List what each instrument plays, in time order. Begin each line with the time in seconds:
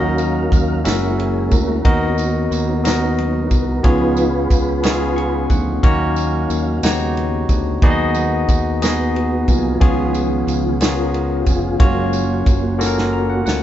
Already playing: fingered electric bass D#2, tine electric piano D#3 C#4 D#4 F#4 A#4 D#5, tonewheel organ F#3 C#4 F#4 A#4 F5
0.18 ride, tambourine
0.52 fingered electric bass D#2, kick, ride, tambourine
0.84 fingered electric bass F#1, tonewheel organ G#3 A#3 C#4 E4 F#4, tine electric piano C#4 E4 F#4 A#4 E5, snare, ride, tambourine
1.18 tonewheel organ G#4, ride
1.51 fingered electric bass D2, tonewheel organ F#4 A#4, kick, ride, tambourine
1.84 fingered electric bass D#2, tine electric piano D#3 B3 D#4 F#4 A#4 D#5, tonewheel organ B3 C#4 D#4, kick, ride
2.18 ride, tambourine
2.51 fingered electric bass D#2, ride, tambourine
2.78 tonewheel organ A4
2.84 tine electric piano B3 D#4 F#4 A#4 D#5, tonewheel organ A#4, snare, ride, tambourine
2.88 tonewheel organ F#4
3.18 tonewheel organ F#3 C#4 D#4, ride
3.51 fingered electric bass C2, kick, ride, tambourine
3.83 fingered electric bass C#2, tine electric piano C#3 B3 C#4 F4 G#4 C#5, tonewheel organ F3 B3 D#4 F4 G#4 B4, kick, ride
4.17 ride, tambourine
4.50 fingered electric bass C#2, kick, ride, tambourine
4.83 tine electric piano B3 C#4 D#4 G#4 C#5, snare, ride, tambourine
4.90 tine electric piano F4
5.16 tine electric piano C#6, ride
5.49 fingered electric bass D2, tonewheel organ F3 B3 D#4, tine electric piano F#5, kick, ride, tambourine
5.82 fingered electric bass D#2, tine electric piano D#3 A#3 C#4 D#4 F#4 C#5, tonewheel organ F#3 C#4 F5, kick, ride
6.16 ride, tambourine
6.50 fingered electric bass D#2, ride, tambourine
6.82 fingered electric bass D#2, tine electric piano C#3 B3 D#4 F#4 G4 C#5, tonewheel organ G3 B3 C#4, snare, ride, tambourine
7.17 ride
7.49 fingered electric bass D2, kick, ride, tambourine
7.81 fingered electric bass D#2, tine electric piano D#3 B3 D#4 F#4 G#4 D5, tonewheel organ F#3 B3 A#4, kick, ride
7.90 tine electric piano D#5
8.15 ride, tambourine
8.48 fingered electric bass D#2, kick, ride, tambourine
8.82 tine electric piano B3 D#4 F#4 G#4 D#5, tonewheel organ B3 F#4, snare, ride, tambourine
9.16 ride
9.47 fingered electric bass C2, tonewheel organ F#3 A#3 B3 F4 G#4, kick, ride, tambourine
9.79 fingered electric bass C#2, tine electric piano C#3 B3 C#4 F4 G#4 C#5, tonewheel organ D#3 F3 B3, kick, ride
10.14 ride, tambourine
10.47 fingered electric bass C#2, ride, tambourine
10.80 tine electric piano B3 C#4 F4 G#4 C#5, tonewheel organ F4 A#4, snare, ride, tambourine
11.14 ride
11.41 tonewheel organ G4
11.46 fingered electric bass F1, tonewheel organ G#4, kick, ride, tambourine
11.78 fingered electric bass F#1, tonewheel organ F#3 G#3 A#3 C#4 F#4, tine electric piano A#3 C#4 F4 F#4 C#5, kick, ride
12.13 ride, tambourine
12.46 fingered electric bass F#1, kick, ride, tambourine
12.79 tine electric piano A#3 C#4 F4 F#4 A4, snare, tambourine
12.86 tine electric piano A#4
12.98 snare
13.13 tine electric piano A#5
13.30 tine electric piano F#5
13.46 fingered electric bass D2, tine electric piano F#5, snare, tambourine